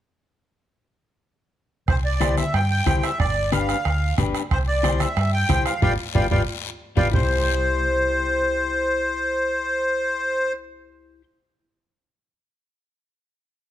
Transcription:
1.88 2.41 C2 medium
1.88 1.96 C5 medium
1.88 bombo low medium
1.88 bombo rim medium
1.88 long guiro medium
2.05 2.35 D5 medium
2.21 2.44 E4 medium
2.21 2.44 G4 medium
2.21 2.44 C5 medium
2.21 bombo rim medium
2.21 high conga medium
2.21 short guiro medium
2.37 2.53 E5 medium
2.37 bombo rim medium
2.37 high conga medium
2.37 short guiro medium
2.54 2.80 G2 medium
2.54 2.69 G5 medium
2.54 bombo rim medium
2.54 long guiro medium
2.71 3.04 G5 loud
2.86 3.00 C2 medium
2.86 3.10 E4 medium
2.86 3.10 G4 medium
2.86 3.10 C5 medium
2.86 bombo low medium
2.86 bombo rim medium
2.86 high conga medium
2.86 short guiro medium
3.03 3.19 E5 medium
3.03 bombo rim medium
3.03 short guiro medium
3.20 3.72 G1 loud
3.20 3.50 D5 loud
3.20 bombo low medium
3.20 bombo rim medium
3.20 long guiro medium
3.52 3.75 D4 medium
3.52 3.76 G4 medium
3.52 3.76 B4 medium
3.52 4.15 F5 medium
3.52 bombo rim medium
3.52 high conga medium
3.52 short guiro medium
3.69 bombo rim medium
3.69 short guiro medium
3.85 4.12 D2 medium
3.85 bombo rim medium
3.85 long guiro medium
4.18 4.31 G1 medium
4.18 4.41 D4 medium
4.18 4.41 G4 medium
4.18 4.42 B4 medium
4.18 bombo low medium
4.18 bombo rim medium
4.18 high conga medium
4.18 low conga medium
4.18 short guiro medium
4.34 bombo rim medium
4.34 short guiro medium
4.51 5.04 C2 loud
4.51 4.58 C5 loud
4.51 bombo low medium
4.51 bombo rim medium
4.51 long guiro medium
4.67 5.01 D5 loud
4.83 5.07 E4 medium
4.83 5.07 G4 medium
4.83 5.07 C5 medium
4.83 bombo rim medium
4.83 high conga medium
4.83 short guiro medium
5.00 5.31 E5 medium
5.00 bombo rim medium
5.00 high conga medium
5.00 short guiro medium
5.17 5.43 G2 loud
5.17 bombo rim medium
5.17 long guiro medium
5.33 5.64 G5 loud
5.49 5.63 C2 medium
5.49 5.72 E4 medium
5.49 5.73 G4 medium
5.49 5.73 C5 medium
5.49 bombo low medium
5.49 bombo rim medium
5.49 high conga medium
5.49 short guiro medium
5.66 5.81 F5 medium
5.66 bombo rim medium
5.66 short guiro medium
5.82 5.95 G1 medium
5.82 5.93 F4 loud
5.82 5.93 G4 loud
5.82 5.93 B4 medium
5.82 5.93 D5 medium
5.82 5.93 F5 loud
5.82 5.93 G5 loud
5.82 bombo low loud
5.82 low conga loud
5.82 long guiro medium
6.15 6.27 G1 loud
6.15 6.26 F4 medium
6.15 6.26 G4 medium
6.15 6.26 B4 loud
6.15 6.26 D5 medium
6.15 6.26 F5 medium
6.15 6.26 G5 medium
6.15 bombo low medium
6.15 low conga medium
6.15 long guiro loud
6.31 6.44 G1 medium
6.31 6.42 F4 loud
6.31 6.42 G4 loud
6.31 6.42 B4 medium
6.31 6.42 D5 medium
6.31 6.42 F5 medium
6.31 6.42 G5 medium
6.31 bombo low loud
6.31 low conga loud
6.31 long guiro medium
6.97 7.10 G1 loud
6.97 7.08 F4 medium
6.97 7.08 G4 medium
6.97 7.08 B4 medium
6.97 7.08 D5 medium
6.97 7.08 F5 medium
6.97 7.08 G5 loud
6.97 bombo low loud
6.97 low conga medium
6.97 long guiro medium
7.11 11.22 C2 medium
7.11 11.21 E4 medium
7.11 11.22 G4 medium
7.11 10.53 C5 medium
7.11 11.23 C5 medium
7.11 bombo low loud
7.11 low conga loud
7.11 long guiro medium

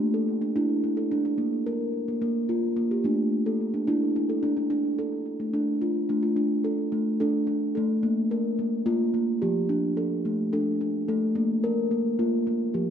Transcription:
0.00 0.40 D4 medium
0.14 0.42 A4 medium
0.42 0.55 D4 medium
0.56 0.82 D4 medium
0.56 0.84 E4 medium
0.84 0.98 D4 medium
0.97 1.25 A4 medium
1.11 1.24 D4 medium
1.25 1.53 D4 medium
1.38 2.07 A#3 medium
1.66 1.94 A#4 medium
2.08 2.20 A#3 medium
2.22 2.71 A#3 medium
2.49 2.77 F4 medium
2.77 2.91 A#3 medium
2.91 3.05 G4 medium
3.04 3.32 A3 medium
3.04 3.73 D4 medium
3.46 3.74 A4 medium
3.74 3.86 D4 medium
3.87 4.15 D4 medium
3.87 4.16 E4 medium
4.16 4.30 D4 medium
4.29 4.57 A4 medium
4.43 4.56 D4 medium
4.57 4.69 D4 medium
4.70 5.44 D4 medium
4.99 5.27 A4 medium
5.40 5.68 A3 medium
5.54 6.03 D4 medium
5.82 6.10 F4 medium
6.09 6.24 A3 medium
6.09 6.34 D4 medium
6.23 6.37 F4 medium
6.36 6.61 D4 medium
6.64 6.93 A4 medium
6.92 7.20 A3 medium
7.20 7.46 D4 medium
7.20 7.48 A4 medium
7.47 7.75 D4 medium
7.75 7.89 A3 medium
7.75 8.03 A4 medium
8.03 8.31 A#3 medium
8.31 8.59 A#4 medium
8.59 8.85 A#3 medium
8.86 9.13 A#3 medium
8.86 9.14 F4 medium
9.14 9.42 A#3 medium
9.42 9.55 F3 medium
9.42 9.70 G4 medium
9.69 9.94 D4 medium
9.97 10.25 A4 medium
10.25 10.53 A3 medium
10.53 10.80 D4 medium
10.53 10.81 A4 medium
10.81 11.09 D4 medium
11.08 11.21 A3 medium
11.08 11.36 A4 medium
11.35 11.61 A#3 medium
11.64 11.92 A#4 medium
11.91 12.18 A#3 medium
12.19 12.46 A#3 medium
12.19 12.47 F4 medium
12.47 12.75 A#3 medium
12.74 12.87 F3 medium
12.74 12.90 G4 medium

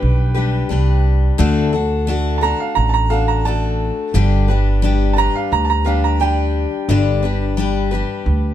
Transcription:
0.00 0.61 B1 medium
0.00 0.36 G3 soft
0.00 0.36 D4 soft
0.00 0.34 G4 soft
0.00 0.33 B4 medium
0.00 1.01 B4 medium
0.00 1.01 G5 medium
0.34 0.68 G3 soft
0.34 0.69 D4 soft
0.34 0.70 G4 medium
0.34 0.70 B4 medium
0.69 1.29 C2 medium
0.69 1.38 G3 medium
0.69 1.39 D4 medium
0.69 1.40 G4 medium
0.69 1.40 B4 medium
1.38 2.52 D2 loud
1.38 1.73 D3 medium
1.38 1.73 A3 medium
1.38 1.74 D4 loud
1.38 1.73 F#4 medium
1.38 1.71 A4 loud
1.73 2.07 D4 soft
1.73 2.08 F#4 medium
1.73 2.08 A4 medium
2.07 2.42 A3 medium
2.07 2.42 D4 medium
2.07 2.42 F#4 medium
2.07 2.40 A4 medium
2.38 3.09 A4 medium
2.38 2.42 A5 medium
2.43 3.13 D4 soft
2.43 3.11 F#4 soft
2.43 2.59 A#5 loud
2.60 2.76 F5 medium
2.75 3.89 A1 medium
2.75 2.92 A#5 medium
2.89 2.93 A5 medium
2.94 3.10 A#5 medium
3.10 3.45 D4 soft
3.10 3.46 F#4 soft
3.10 3.45 A4 medium
3.10 3.27 F5 medium
3.28 3.44 A#5 medium
3.45 4.14 A3 medium
3.45 4.15 D4 soft
3.45 4.15 F#4 medium
3.45 4.15 A4 medium
3.45 4.12 A5 medium
4.14 5.27 G1 medium
4.14 4.48 G2 medium
4.14 4.49 D3 medium
4.14 4.49 G3 medium
4.14 4.49 D4 medium
4.14 4.48 G4 medium
4.14 4.47 B4 medium
4.48 4.81 G3 soft
4.48 4.82 D4 medium
4.48 4.83 G4 medium
4.48 4.83 B4 medium
4.82 5.17 G3 medium
4.82 5.17 D4 medium
4.82 5.16 G4 medium
4.82 5.15 B4 medium
5.13 5.83 B4 soft
5.13 5.17 A5 medium
5.18 5.87 G3 soft
5.18 5.87 D4 soft
5.18 5.85 G4 soft
5.18 5.34 A#5 loud
5.36 5.51 F5 medium
5.52 6.64 D2 medium
5.52 5.68 A#5 medium
5.65 5.69 A5 medium
5.70 5.85 A#5 medium
5.85 6.18 G3 soft
5.85 6.19 D4 medium
5.85 6.20 G4 medium
5.85 6.20 B4 medium
5.85 6.02 F5 medium
6.04 6.19 A#5 medium
6.20 6.88 G3 soft
6.20 6.90 D4 medium
6.20 6.89 G4 medium
6.20 6.90 B4 medium
6.20 6.87 G5 medium
6.89 8.02 G1 loud
6.89 7.23 G2 medium
6.89 7.23 D3 medium
6.89 7.24 G3 medium
6.89 7.24 D4 medium
6.89 7.23 G4 medium
6.89 7.21 B4 medium
7.23 7.56 G3 soft
7.23 7.57 D4 soft
7.23 7.58 G4 soft
7.23 7.57 B4 medium
7.57 7.92 G3 medium
7.57 7.92 D4 medium
7.57 7.91 G4 medium
7.57 7.90 B4 medium
7.91 8.54 G3 medium
7.91 8.54 D4 medium
7.91 8.54 G4 soft
7.91 8.54 B4 medium
8.26 8.54 D2 medium

